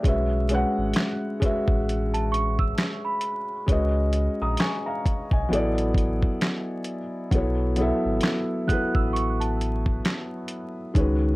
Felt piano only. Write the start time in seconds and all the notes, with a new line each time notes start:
0.03 G#3 C#4 F#4
0.07 B4 E5
0.49 G#3 C#4 F#4
0.53 B4 F#5
1.40 G#3 C#4 F#4
1.44 B4 E5
3.66 G#3 C#4 F#4
3.70 B4 D#5
4.42 A#5 D#6
4.61 G#5 C#6
4.86 F5 A#5
5.33 D#5 G#5
5.49 F#3 B3 E4
5.53 A4 D5
7.31 F#3 B3 E4
7.35 A4 C#5
7.76 F#3 B3 E4
7.80 A4 E5
8.67 F#3 B3 E4 A4
8.73 B4
10.94 D#3 G#3 C#4
10.98 F#4 B4